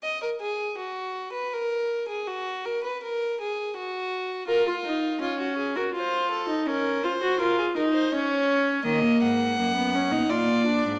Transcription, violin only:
\new Staff \with { instrumentName = "Violin" } { \time 3/4 \key bes \phrygian \tempo 4 = 82 ees''16 bes'16 aes'8 ges'8. ces''16 bes'8. aes'16 | ges'8 bes'16 ces''16 bes'8 aes'8 ges'4 | f'4 f'16 ges'16 aes'16 bes'16 c''8 a'8 | bes'8 c''8 bes'16 aes'16 bes'16 c''16 des''4 |
ees''8 ges''4. d''4 | }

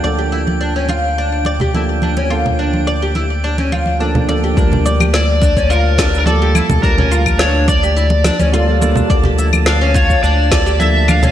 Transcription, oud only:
\new Staff \with { instrumentName = "Oud" } { \time 4/4 \key g \dorian \tempo 4 = 106 d''16 g'16 e'16 r16 d'16 cis'16 f'8 d'8 d''16 g'16 e'16 r16 d'16 cis'16 | f'8 d'8 d''16 g'16 e'16 r16 d'16 cis'16 f'8 d'8 d''16 g'16 | d'8 d''16 g'16 e'16 r16 d'16 cis'16 f'8 d'8 d''16 g'16 e'16 r16 | d'16 cis'16 f'8 d'8 d''16 g'16 e'16 r16 d'16 cis'16 f'8 d'8 |
d''16 g'16 e'16 r16 d'16 cis'16 f'8 d'8 d''16 g'16 e'16 r16 d'16 cis'16 | }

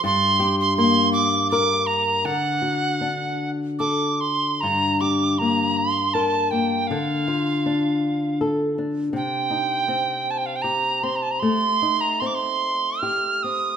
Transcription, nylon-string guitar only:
\new Staff \with { instrumentName = "Nylon-string guitar" } { \time 3/4 \key g \minor \tempo 4 = 80 g,8 g'8 bes4 bes'4 | d8 fis'8 d'4 a'4 | g,8 g'8 bes4 bes'8 bes8 | d8 f'8 d'4 a'8 d'8 |
c8 ees'8 c'4 g'8 c'8 | a8 ees'8 c'4 g'8 c'8 | }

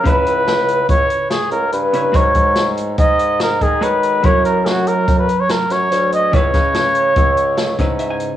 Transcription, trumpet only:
\new Staff \with { instrumentName = "Trumpet" } { \time 5/4 \key cis \dorian \tempo 4 = 144 b'2 cis''4 gis'8 ais'8 b'4 | cis''4~ cis''16 r8. dis''4 ais'8 gis'8 b'4 | cis''8 ais'8 fis'8 ais'8. b'8 cis''16 ais'8 cis''4 dis''8 | cis''1 r4 | }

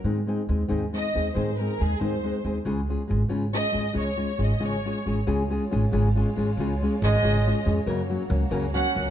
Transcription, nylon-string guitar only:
\new Staff \with { instrumentName = "Nylon-string guitar" } { \time 6/8 \key des \major \tempo 4. = 92 <aes, ees aes c' ees' aes'>8 <aes c' ees' aes'>8 <aes c' ees' aes'>8 <aes, ees aes c' ees' aes'>8 <aes c' ees' aes'>8 <aes c' ees' aes'>8 | <aes, ees aes c' ees' aes'>8 <aes c' ees' aes'>8 <aes c' ees' aes'>8 <aes, ees aes c' ees' aes'>8 <aes c' ees' aes'>8 <aes c' ees' aes'>8 | <des aes des' f' aes'>8 <aes des' f' aes'>8 <aes des' f' aes'>8 <des aes des' f' aes'>8 <aes des' f' aes'>8 <aes des' f' aes'>8 | <des aes des' f' aes'>8 <aes des' f' aes'>8 <aes des' f' aes'>8 <des aes des' f' aes'>8 <aes des' f' aes'>8 <aes des' f' aes'>8 |
<des aes des' f' aes'>8 <aes des' f' aes'>8 <aes des' f' aes'>8 <des aes des' f' aes'>8 <aes des' f' aes'>8 <aes des' f' aes'>8 | <des aes des' f' aes'>8 <aes des' f' aes'>8 <aes des' f' aes'>8 <des aes des' f' aes'>8 <aes des' f' aes'>8 <aes des' f' aes'>8 | <ges, des ges bes des' bes'>8 <ges bes des' bes'>8 <ges bes des' bes'>8 <ges, des ges bes des' bes'>8 <ges bes des' bes'>8 <ges bes des' bes'>8 | }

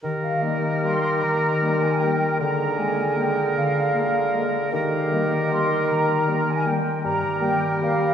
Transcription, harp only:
\new Staff \with { instrumentName = "Harp" } { \time 3/4 \key ees \major \tempo 4 = 153 ees8 g8 ees'8 bes'8 g'4 | ees8 g8 ees'4 g'8 bes'8 | d8 d'8 aes8 f'8 bes'8 f'8 | d8 d'8 aes8 f'8 bes'8 f'8 |
ees8 ees'8 g4 bes'4 | ees8 ees'8 g8 g'8 bes'8 g'8 | g,8 ees8 g4 bes'4 | }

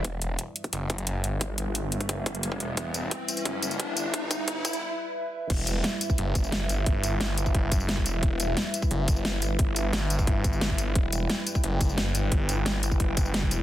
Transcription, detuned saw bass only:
\new Staff \with { instrumentName = "Detuned saw bass" } { \clef bass \time 4/4 \key e \minor \tempo 4 = 176 e,,8 e,,8 r4 fis,,4. g,,8~ | g,,2 fis,,4. e,,8 | e,,8 e,,8 r4 fis,,4. g,,8~ | g,,2 r2 |
e,,8 e,,8 r4 fis,,4. g,,8~ | g,,2 fis,,4. e,,8 | e,,8 e,,8 r4 fis,,4. g,,8~ | g,,2 g,,2 |
e,,8 e,,8 r4 fis,,4. g,,8~ | g,,2 fis,,4. e,,8 | }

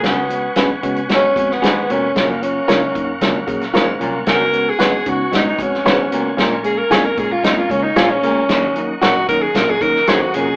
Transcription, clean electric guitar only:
\new Staff \with { instrumentName = "Clean electric guitar" } { \time 4/4 \key des \mixolydian \tempo 4 = 114 r4 <des' ges' ces''>8 r4. <des' ges' ces''>8 r8 | r4 <f' bes' des''>8 r4. <f' bes' des''>8 r8 | r4 <ges' ces'' des''>8 r4. <ges' ces'' des''>8 r8 | r4 <f' aes' des''>8 r4. <f' aes' des''>8 r8 |
r4 <ges' bes' des''>8 r4. <ges' bes' des''>8 r8 | }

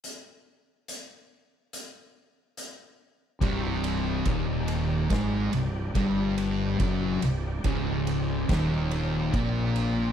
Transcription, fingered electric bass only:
\new Staff \with { instrumentName = "Fingered electric bass" } { \clef bass \time 4/4 \key c \minor \tempo 4 = 71 r1 | c,,4 ees,,4 aes,,8 c,,8 g,,4 | fis,,8 c,,8 des,,4 ees,,4 bes,,4 | }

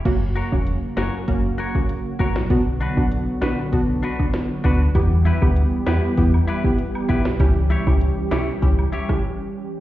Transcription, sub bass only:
\new Staff \with { instrumentName = "Sub bass" } { \clef bass \time 4/4 \key fis \phrygian \tempo 4 = 98 fis,,8. e,,8 r16 fis,,16 r16 fis,,8 r4 ais,,8 | b,,8. b,,8 r16 ais,,16 r16 b,,8 r4 d,8 | e,8. d,8 r16 e,16 r16 e,8 r4 b,,8 | cis,8. cis,8 r16 b,,16 r16 cis,8 r4. | }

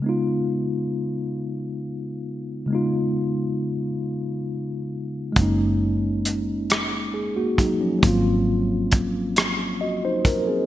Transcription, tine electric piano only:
<<
  \new Staff \with { instrumentName = "Tine electric piano" } { \time 6/8 \key cis \mixolydian \tempo 4. = 45 r2. | r2. | r2 gis'16 <ais fis'>16 <fis dis'>16 <eis cis'>16~ | <eis cis'>16 r4. r16 <fis' dis''>16 <dis' bis'>16 ais'16 <bis gis'>16 | }
  \new Staff \with { instrumentName = "Tine electric piano" } { \time 6/8 \key cis \mixolydian <cis gis b dis' eis'>2. | <cis gis b dis' eis'>2. | <gis ais cis' dis'>2 r4 | <fis ais bis eis'>2. | }
>>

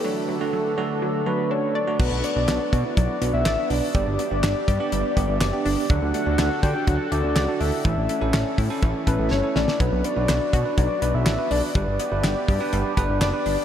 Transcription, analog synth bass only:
\new Staff \with { instrumentName = "Analog synth bass" } { \clef bass \time 4/4 \key b \minor \tempo 4 = 123 r1 | b,,16 b,,16 r16 b,,16 b,,16 r16 b,16 r16 b,,16 r16 b,,16 b,,16 a,,16 r16 b,,16 r16 | g,,16 g,,16 r16 g,,16 g,,16 r16 g,16 r16 g,,16 r16 g,,16 g,,16 fis,,16 r16 g,,16 r16 | d,16 d,16 r16 d,16 d,16 r16 d16 r16 d,16 r16 d,16 d,16 cis,16 r16 d,16 r16 |
a,,16 a,,16 r16 a,,16 a,,16 r16 a,16 r16 a,,16 r16 a,,16 a,,16 g,,16 r16 a,,16 r16 | b,,16 b,,16 r16 b,,16 b,,16 r16 b,16 r16 b,,16 r16 b,,16 b,,16 a,,16 r16 b,,16 r16 | g,,16 g,,16 r16 g,,16 g,,16 r16 g,16 r16 g,,16 r16 g,,16 g,,16 fis,,16 r16 g,,16 r16 | }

